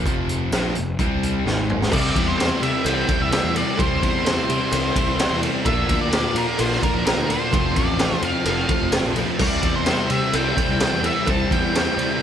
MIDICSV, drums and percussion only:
0, 0, Header, 1, 2, 480
1, 0, Start_track
1, 0, Tempo, 467654
1, 51, Time_signature, 4, 2, 24, 8
1, 12545, End_track
2, 0, Start_track
2, 0, Title_t, "Drums"
2, 58, Note_on_c, 9, 36, 100
2, 62, Note_on_c, 9, 42, 66
2, 160, Note_off_c, 9, 36, 0
2, 165, Note_off_c, 9, 42, 0
2, 298, Note_on_c, 9, 42, 59
2, 401, Note_off_c, 9, 42, 0
2, 535, Note_on_c, 9, 42, 66
2, 542, Note_on_c, 9, 38, 108
2, 637, Note_off_c, 9, 42, 0
2, 644, Note_off_c, 9, 38, 0
2, 771, Note_on_c, 9, 42, 65
2, 873, Note_off_c, 9, 42, 0
2, 1016, Note_on_c, 9, 36, 112
2, 1018, Note_on_c, 9, 42, 70
2, 1118, Note_off_c, 9, 36, 0
2, 1121, Note_off_c, 9, 42, 0
2, 1263, Note_on_c, 9, 42, 69
2, 1366, Note_off_c, 9, 42, 0
2, 1506, Note_on_c, 9, 38, 64
2, 1609, Note_off_c, 9, 38, 0
2, 1743, Note_on_c, 9, 45, 83
2, 1845, Note_off_c, 9, 45, 0
2, 1871, Note_on_c, 9, 38, 82
2, 1968, Note_on_c, 9, 56, 108
2, 1974, Note_off_c, 9, 38, 0
2, 1977, Note_on_c, 9, 36, 107
2, 1981, Note_on_c, 9, 49, 126
2, 2071, Note_off_c, 9, 56, 0
2, 2080, Note_off_c, 9, 36, 0
2, 2083, Note_off_c, 9, 49, 0
2, 2213, Note_on_c, 9, 36, 87
2, 2216, Note_on_c, 9, 51, 73
2, 2316, Note_off_c, 9, 36, 0
2, 2319, Note_off_c, 9, 51, 0
2, 2445, Note_on_c, 9, 56, 86
2, 2463, Note_on_c, 9, 51, 102
2, 2470, Note_on_c, 9, 38, 112
2, 2547, Note_off_c, 9, 56, 0
2, 2566, Note_off_c, 9, 51, 0
2, 2573, Note_off_c, 9, 38, 0
2, 2697, Note_on_c, 9, 51, 76
2, 2799, Note_off_c, 9, 51, 0
2, 2921, Note_on_c, 9, 56, 102
2, 2931, Note_on_c, 9, 51, 106
2, 3024, Note_off_c, 9, 56, 0
2, 3033, Note_off_c, 9, 51, 0
2, 3156, Note_on_c, 9, 56, 81
2, 3166, Note_on_c, 9, 51, 67
2, 3169, Note_on_c, 9, 36, 98
2, 3258, Note_off_c, 9, 56, 0
2, 3269, Note_off_c, 9, 51, 0
2, 3272, Note_off_c, 9, 36, 0
2, 3400, Note_on_c, 9, 56, 80
2, 3409, Note_on_c, 9, 51, 102
2, 3416, Note_on_c, 9, 38, 112
2, 3503, Note_off_c, 9, 56, 0
2, 3512, Note_off_c, 9, 51, 0
2, 3519, Note_off_c, 9, 38, 0
2, 3642, Note_on_c, 9, 56, 77
2, 3651, Note_on_c, 9, 51, 82
2, 3745, Note_off_c, 9, 56, 0
2, 3754, Note_off_c, 9, 51, 0
2, 3876, Note_on_c, 9, 56, 93
2, 3891, Note_on_c, 9, 36, 116
2, 3894, Note_on_c, 9, 51, 92
2, 3979, Note_off_c, 9, 56, 0
2, 3993, Note_off_c, 9, 36, 0
2, 3997, Note_off_c, 9, 51, 0
2, 4132, Note_on_c, 9, 36, 82
2, 4135, Note_on_c, 9, 51, 68
2, 4235, Note_off_c, 9, 36, 0
2, 4238, Note_off_c, 9, 51, 0
2, 4363, Note_on_c, 9, 56, 81
2, 4373, Note_on_c, 9, 51, 90
2, 4381, Note_on_c, 9, 38, 112
2, 4466, Note_off_c, 9, 56, 0
2, 4476, Note_off_c, 9, 51, 0
2, 4483, Note_off_c, 9, 38, 0
2, 4613, Note_on_c, 9, 51, 76
2, 4716, Note_off_c, 9, 51, 0
2, 4840, Note_on_c, 9, 56, 89
2, 4847, Note_on_c, 9, 51, 113
2, 4943, Note_off_c, 9, 56, 0
2, 4950, Note_off_c, 9, 51, 0
2, 5084, Note_on_c, 9, 56, 62
2, 5089, Note_on_c, 9, 36, 84
2, 5091, Note_on_c, 9, 51, 79
2, 5187, Note_off_c, 9, 56, 0
2, 5191, Note_off_c, 9, 36, 0
2, 5194, Note_off_c, 9, 51, 0
2, 5324, Note_on_c, 9, 56, 76
2, 5330, Note_on_c, 9, 51, 99
2, 5337, Note_on_c, 9, 38, 115
2, 5427, Note_off_c, 9, 56, 0
2, 5432, Note_off_c, 9, 51, 0
2, 5439, Note_off_c, 9, 38, 0
2, 5560, Note_on_c, 9, 56, 70
2, 5571, Note_on_c, 9, 51, 78
2, 5663, Note_off_c, 9, 56, 0
2, 5673, Note_off_c, 9, 51, 0
2, 5803, Note_on_c, 9, 51, 106
2, 5803, Note_on_c, 9, 56, 100
2, 5807, Note_on_c, 9, 36, 108
2, 5906, Note_off_c, 9, 51, 0
2, 5906, Note_off_c, 9, 56, 0
2, 5910, Note_off_c, 9, 36, 0
2, 6046, Note_on_c, 9, 36, 78
2, 6046, Note_on_c, 9, 51, 78
2, 6149, Note_off_c, 9, 36, 0
2, 6149, Note_off_c, 9, 51, 0
2, 6278, Note_on_c, 9, 56, 76
2, 6286, Note_on_c, 9, 51, 103
2, 6293, Note_on_c, 9, 38, 107
2, 6381, Note_off_c, 9, 56, 0
2, 6388, Note_off_c, 9, 51, 0
2, 6395, Note_off_c, 9, 38, 0
2, 6524, Note_on_c, 9, 51, 85
2, 6627, Note_off_c, 9, 51, 0
2, 6759, Note_on_c, 9, 56, 91
2, 6760, Note_on_c, 9, 51, 116
2, 6861, Note_off_c, 9, 56, 0
2, 6862, Note_off_c, 9, 51, 0
2, 6893, Note_on_c, 9, 38, 35
2, 6995, Note_off_c, 9, 38, 0
2, 7006, Note_on_c, 9, 36, 84
2, 7007, Note_on_c, 9, 56, 75
2, 7009, Note_on_c, 9, 51, 75
2, 7109, Note_off_c, 9, 36, 0
2, 7109, Note_off_c, 9, 56, 0
2, 7112, Note_off_c, 9, 51, 0
2, 7239, Note_on_c, 9, 56, 80
2, 7250, Note_on_c, 9, 51, 97
2, 7257, Note_on_c, 9, 38, 116
2, 7342, Note_off_c, 9, 56, 0
2, 7353, Note_off_c, 9, 51, 0
2, 7360, Note_off_c, 9, 38, 0
2, 7479, Note_on_c, 9, 56, 71
2, 7491, Note_on_c, 9, 51, 80
2, 7582, Note_off_c, 9, 56, 0
2, 7594, Note_off_c, 9, 51, 0
2, 7717, Note_on_c, 9, 56, 89
2, 7727, Note_on_c, 9, 36, 115
2, 7732, Note_on_c, 9, 51, 96
2, 7820, Note_off_c, 9, 56, 0
2, 7829, Note_off_c, 9, 36, 0
2, 7835, Note_off_c, 9, 51, 0
2, 7965, Note_on_c, 9, 36, 86
2, 7966, Note_on_c, 9, 51, 75
2, 8068, Note_off_c, 9, 36, 0
2, 8069, Note_off_c, 9, 51, 0
2, 8200, Note_on_c, 9, 56, 82
2, 8202, Note_on_c, 9, 51, 91
2, 8209, Note_on_c, 9, 38, 112
2, 8302, Note_off_c, 9, 56, 0
2, 8304, Note_off_c, 9, 51, 0
2, 8312, Note_off_c, 9, 38, 0
2, 8441, Note_on_c, 9, 51, 80
2, 8544, Note_off_c, 9, 51, 0
2, 8677, Note_on_c, 9, 51, 107
2, 8682, Note_on_c, 9, 56, 89
2, 8779, Note_off_c, 9, 51, 0
2, 8785, Note_off_c, 9, 56, 0
2, 8915, Note_on_c, 9, 51, 73
2, 8921, Note_on_c, 9, 36, 89
2, 8925, Note_on_c, 9, 56, 71
2, 9018, Note_off_c, 9, 51, 0
2, 9024, Note_off_c, 9, 36, 0
2, 9028, Note_off_c, 9, 56, 0
2, 9154, Note_on_c, 9, 51, 118
2, 9162, Note_on_c, 9, 38, 124
2, 9162, Note_on_c, 9, 56, 75
2, 9257, Note_off_c, 9, 51, 0
2, 9264, Note_off_c, 9, 38, 0
2, 9265, Note_off_c, 9, 56, 0
2, 9399, Note_on_c, 9, 51, 80
2, 9407, Note_on_c, 9, 56, 74
2, 9501, Note_off_c, 9, 51, 0
2, 9509, Note_off_c, 9, 56, 0
2, 9640, Note_on_c, 9, 57, 105
2, 9642, Note_on_c, 9, 56, 99
2, 9643, Note_on_c, 9, 36, 115
2, 9743, Note_off_c, 9, 57, 0
2, 9745, Note_off_c, 9, 56, 0
2, 9746, Note_off_c, 9, 36, 0
2, 9880, Note_on_c, 9, 51, 71
2, 9883, Note_on_c, 9, 36, 84
2, 9983, Note_off_c, 9, 51, 0
2, 9986, Note_off_c, 9, 36, 0
2, 10118, Note_on_c, 9, 51, 110
2, 10120, Note_on_c, 9, 56, 77
2, 10125, Note_on_c, 9, 38, 105
2, 10221, Note_off_c, 9, 51, 0
2, 10223, Note_off_c, 9, 56, 0
2, 10228, Note_off_c, 9, 38, 0
2, 10363, Note_on_c, 9, 51, 77
2, 10466, Note_off_c, 9, 51, 0
2, 10605, Note_on_c, 9, 51, 103
2, 10607, Note_on_c, 9, 56, 103
2, 10707, Note_off_c, 9, 51, 0
2, 10710, Note_off_c, 9, 56, 0
2, 10845, Note_on_c, 9, 56, 77
2, 10850, Note_on_c, 9, 36, 85
2, 10855, Note_on_c, 9, 51, 74
2, 10947, Note_off_c, 9, 56, 0
2, 10952, Note_off_c, 9, 36, 0
2, 10958, Note_off_c, 9, 51, 0
2, 11086, Note_on_c, 9, 51, 100
2, 11087, Note_on_c, 9, 56, 93
2, 11094, Note_on_c, 9, 38, 120
2, 11189, Note_off_c, 9, 51, 0
2, 11190, Note_off_c, 9, 56, 0
2, 11196, Note_off_c, 9, 38, 0
2, 11321, Note_on_c, 9, 56, 88
2, 11330, Note_on_c, 9, 51, 82
2, 11424, Note_off_c, 9, 56, 0
2, 11433, Note_off_c, 9, 51, 0
2, 11562, Note_on_c, 9, 56, 106
2, 11570, Note_on_c, 9, 51, 94
2, 11571, Note_on_c, 9, 36, 108
2, 11665, Note_off_c, 9, 56, 0
2, 11672, Note_off_c, 9, 51, 0
2, 11674, Note_off_c, 9, 36, 0
2, 11815, Note_on_c, 9, 36, 85
2, 11822, Note_on_c, 9, 51, 67
2, 11918, Note_off_c, 9, 36, 0
2, 11925, Note_off_c, 9, 51, 0
2, 12044, Note_on_c, 9, 56, 79
2, 12062, Note_on_c, 9, 51, 100
2, 12069, Note_on_c, 9, 38, 116
2, 12146, Note_off_c, 9, 56, 0
2, 12165, Note_off_c, 9, 51, 0
2, 12172, Note_off_c, 9, 38, 0
2, 12303, Note_on_c, 9, 51, 70
2, 12405, Note_off_c, 9, 51, 0
2, 12545, End_track
0, 0, End_of_file